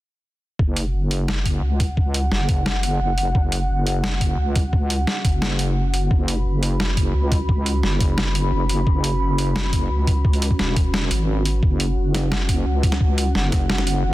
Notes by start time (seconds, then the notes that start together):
0.59 F#1 C#4 F#4 F#5, kick
0.77 closed hi-hat
0.94 F#1
1.11 closed hi-hat
1.28 snare
1.46 kick, closed hi-hat
1.62 C#2
1.80 kick, closed hi-hat
1.97 kick
2.14 closed hi-hat
2.31 F#1, snare
2.49 kick, closed hi-hat
2.66 snare
2.83 closed hi-hat
3.00 F#1
3.18 closed hi-hat
3.35 F#1, kick
3.52 closed hi-hat
3.69 F#1
3.87 closed hi-hat
4.04 snare
4.21 kick, closed hi-hat
4.38 C#2
4.56 kick, closed hi-hat
4.73 kick
4.90 closed hi-hat
5.07 snare
5.25 F#1, kick, closed hi-hat
5.42 snare
5.59 closed hi-hat
5.94 closed hi-hat
6.11 F#1 B5, kick
6.28 closed hi-hat
6.45 F#1
6.63 closed hi-hat
6.80 snare
6.97 kick, closed hi-hat
7.14 C#2
7.32 kick, closed hi-hat
7.49 kick
7.66 closed hi-hat
7.83 F#1, snare
8.01 kick, closed hi-hat
8.18 snare
8.35 closed hi-hat
8.52 F#1
8.69 closed hi-hat
8.87 F#1, kick
9.04 closed hi-hat
9.21 F#1
9.38 closed hi-hat
9.56 snare
9.73 kick, closed hi-hat
9.90 C#2
10.07 kick, closed hi-hat
10.25 kick
10.33 closed hi-hat
10.42 closed hi-hat
10.51 kick
10.59 E1, snare
10.76 kick, closed hi-hat
10.94 snare
11.11 G#1, closed hi-hat
11.45 closed hi-hat
11.63 F#1 F#5, kick
11.80 closed hi-hat
11.97 F#1
12.14 snare, closed hi-hat
12.32 snare
12.49 kick, closed hi-hat
12.66 C#2
12.83 kick, closed hi-hat
12.92 snare
13.01 kick
13.18 closed hi-hat
13.35 F#1, snare
13.52 kick, snare, closed hi-hat
13.70 snare
13.78 snare
13.87 closed hi-hat
14.04 F#1